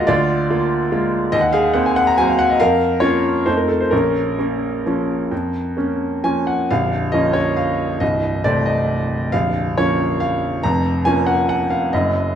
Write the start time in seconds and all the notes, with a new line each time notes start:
Already playing: D2 G#3 A#3 F4 F#4 G#4 A#4 B4 D5 D#5 F5 F#5
0.07 D2 F4 D5
0.50 A#3 F4
0.91 G#3 A#3 F4
1.32 D#2 D#5
1.41 F#5
1.53 G#4 F5
1.74 A#3 C4 F#5
1.86 G#5
1.96 F#5
2.07 A#5
2.18 F#3 A#3 C4 G#5
2.28 F5
2.39 F#5
2.50 D#5
2.60 F2 A#4 F5
3.00 A#3 C#4 F4 C#5
3.46 F2 F3 A3 D#4 C5
3.57 A#4
3.68 A4
3.80 C5
3.91 A#1 C#4 A#4
4.39 A#3 C#4
4.86 F3 A#3 C#4
5.31 F2
5.77 A#3 C#4
6.24 F3 A#3 C#4 G#5
6.47 F#5
6.71 A#0 A#1 F5
7.12 F3 A#3 C#4 D#5
7.33 C#5
7.57 F5
8.00 C1 C2 D#5
8.44 C3 A3 C4 D5
8.66 D#5
9.32 A#0 A#1 F5
9.78 F3 A#3 C#4 C#5
10.20 F5
10.63 F1 F2 A#5
11.05 F3 A#3 C#4 G#5
11.27 F#5
11.49 F#5
11.70 F5
11.93 F#1 F#2 D#5